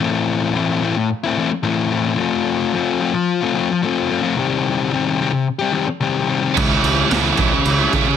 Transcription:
0.00 A2 E3 A3 C4 E4
0.54 A2 E3 A3 C4 E4
0.81 E3 A3 C4 E4
0.97 muted distorted electric guitar stroke
1.24 A3 C4 E4
1.37 E3 A3 C4 E4
1.51 muted distorted electric guitar stroke
1.63 A2 E3 A3 C4 E4
1.89 E3 A3 C4 E4
2.05 A3 C4 E4
2.17 F3 A3 C4 F4
2.73 F3 A3 C4 F4
3.00 F3 A3 C4 F4
3.13 muted distorted electric guitar stroke
3.41 A3 C4 F4
3.54 F3 A3 C4 F4
3.71 muted distorted electric guitar stroke
3.83 F3 A3 C4 F4
4.09 F3 A3 C4 F4
4.22 A3 C4 F4
4.35 C3 D#3 G3 C4 G4
4.91 C3 D#3 G3 C4 G4
5.20 D#3 G3 C4 G4
5.33 muted distorted electric guitar stroke
5.59 G3 C4 G4
5.72 D#3 G3 C4 G4
5.87 muted distorted electric guitar stroke
6.00 C3 D#3 G3 C4 G4
6.27 D#3 G3 C4 G4
6.42 G3 C4 G4
6.56 C#2 C#3 G#3 C#4 E4, kick, crash
6.83 C#2, crash
6.95 G#3 C#4 E4
7.11 C#2 C#3 G#3 C#4 E4, snare, crash
7.37 C#2 C#3 G#3 C#4 E4, kick, crash
7.53 muted distorted electric guitar stroke
7.65 C#2, crash
7.78 G#3 C#4 E4
7.93 C#3 G#3 C#4 E4, kick, crash
8.08 muted distorted electric guitar stroke

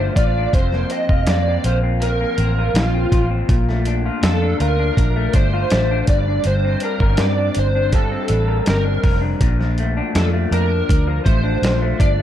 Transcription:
Already playing: A3 F4 C5
0.00 D4
0.15 A1 F4 D5, kick, closed hi-hat
0.37 D4
0.53 F1 F2 C5, kick, closed hi-hat
0.72 A#3, snare
0.90 C4 D#5, closed hi-hat
1.09 F1 F4, kick
1.27 F2 A#3 D5, snare, closed hi-hat
1.48 C4
1.64 A#1 F4 C5, closed hi-hat
1.83 C4
2.02 F2 A#4, closed hi-hat
2.21 A#3
2.38 A1 C4, closed hi-hat
2.58 F4
2.74 A#1 A#3 F4, snare, closed hi-hat
2.94 C4
3.12 A1 F4, kick, closed hi-hat
3.30 C4
3.49 A#1 A#2, kick, closed hi-hat
3.69 A3, snare
3.85 D4, closed hi-hat
4.06 F4
4.23 F2 A4, snare, closed hi-hat
4.42 D4
4.60 D2 F4 A#4, closed hi-hat
4.79 D4
4.97 A#1, kick, closed hi-hat
5.16 A3
5.33 G1 D4 C5, kick, closed hi-hat
5.53 F4
5.70 A1 A3, snare, closed hi-hat
5.91 D4
6.07 G1 G2 D5, kick, closed hi-hat
6.28 D4
6.44 G1 G2 C5, closed hi-hat
6.64 C4
6.80 D4 A#4, closed hi-hat
7.00 G1 A#4, kick
7.17 G2 C4 D5, snare, closed hi-hat
7.38 D4
7.55 G1 C5, closed hi-hat
7.75 D4
7.92 G2 A4, kick, closed hi-hat
8.11 C4
8.28 A1 D4, closed hi-hat
8.48 A#4
8.66 G1 C4 A#4, snare, closed hi-hat
8.84 D4
9.03 F1 A#4, kick, open hi-hat
9.21 D4
9.40 A#1 A#2, kick, closed hi-hat
9.59 F3, snare
9.78 A3, closed hi-hat
9.97 D4
10.15 F2 F3 A4, snare, closed hi-hat
10.33 A3
10.51 F2 D4 A#4, closed hi-hat
10.89 D2, kick, closed hi-hat
11.08 F3
11.25 A1 A3 C5, kick, closed hi-hat
11.44 D4
11.62 A#1 F3, snare, closed hi-hat
11.82 A3
12.00 G1 D4 D5, kick, closed hi-hat

